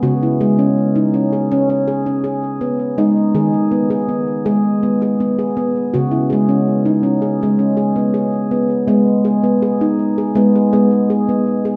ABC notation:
X:1
M:4/4
L:1/16
Q:1/4=82
K:G#m
V:1 name="Handpan"
F E G C2 D C G2 C G C G2 B,2 | D2 G2 B, G B,2 G2 B, G B, G B,2 | F E G C2 D C G2 C G B, G2 B,2 | B,2 G B, G D2 G B, G B,2 G B,2 G |]
V:2 name="Handpan" clef=bass
C,2 G,6 C8 | G,2 D,6 G,8 | C,2 G,6 G,8 | G,8 G,2 G,6 |]